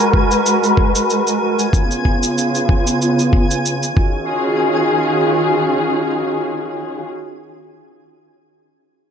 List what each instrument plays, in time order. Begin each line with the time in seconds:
Already playing: string section G#3 F#4 A#4 B4, synth texture G#5
0.14 kick
0.31 shaker
0.46 shaker
0.63 shaker
0.77 kick
0.95 shaker
1.10 shaker
1.27 shaker
1.59 shaker
1.73 string section C#3 B3 F4, kick, shaker
1.91 shaker
2.05 kick
2.23 shaker
2.38 shaker
2.55 shaker
2.69 kick
2.87 shaker
3.02 shaker
3.19 shaker
3.33 kick
3.51 shaker
3.66 shaker
3.83 shaker
3.97 string section D#3 C#4 F4 F#4 G#4, kick